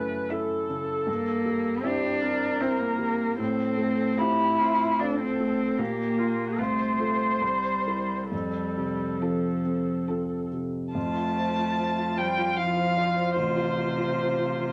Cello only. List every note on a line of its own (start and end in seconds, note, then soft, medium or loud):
0.00 0.31 A3 medium
1.09 1.86 A#3 medium
1.85 2.62 D4 medium
2.60 2.81 C4 medium
2.80 3.39 A#3 medium
3.39 4.20 C4 medium
4.18 5.01 E4 medium
4.99 5.19 D4 medium
5.20 5.80 C4 medium
5.78 6.60 A#3 medium
6.59 7.42 A3 medium
7.41 8.30 G3 medium
8.30 9.21 G3 medium
9.20 10.08 F3 soft
10.95 12.20 A3 medium
12.19 12.58 G3 medium
12.57 13.38 F3 medium
13.36 14.72 C3 medium